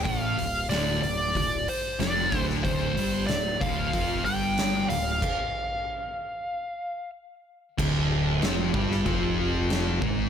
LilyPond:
<<
  \new Staff \with { instrumentName = "Lead electric guitar" } { \time 4/4 \key d \minor \tempo 4 = 93 f''4 d''8 d''4 c''8 d''8. r16 | c''4 d''8 f''4 g''4 f''8~ | f''2. r4 | r1 | }
  \new Staff \with { instrumentName = "Distorted electric guitar" } { \clef bass \time 4/4 \key d \minor <a, a>8 d,8 <d, d>8 d,8 d,8 r8 <f, f>8 <d, d>8 | <d, d>8 <g, g>8 d,8 <d, d>8 <f, f>8 <g, g>4 d,8 | r1 | <d, d>4 <f, f>8 <g, g>8 <f, f>4. <gis, gis>8 | }
  \new Staff \with { instrumentName = "Distorted electric guitar" } { \clef bass \time 4/4 \key d \minor <a, a>8 d,8 <d, d>8 d,8 d,8 r8 <f, f>8 <d, d>8 | <d, d>8 <g, g>8 d,8 <d, d>8 <f, f>8 <g, g>4 d,8 | r1 | <d, d>4 <f, f>8 <g, g>8 <f, f>4. <gis, gis>8 | }
  \new Staff \with { instrumentName = "Picked electric bass" } { \clef bass \time 4/4 \key d \minor a,,8 d,,8 d,,8 d,,8 d,,8 r8 f,,8 d,,8 | d,,8 g,,8 d,,8 d,,8 f,,8 g,,4 d,,8 | r1 | d,,4 f,,8 g,,8 f,,4. gis,,8 | }
  \new DrumStaff \with { instrumentName = "Drums" } \drummode { \time 4/4 <hho bd>8 hho8 <hho sn>8 hho8 <hho bd>8 hho8 <hho sn>8 <hho bd>16 sn16 | <hho bd>8 hho8 <hho sn>8 <hho bd>8 <hho bd>8 hho8 <hho sn>8 hho8 | <cymc bd>4 r4 r4 r4 | <cymc bd>4 <cymc sn>8 bd16 sn16 <cymc bd>4 <cymc sn>8 bd8 | }
>>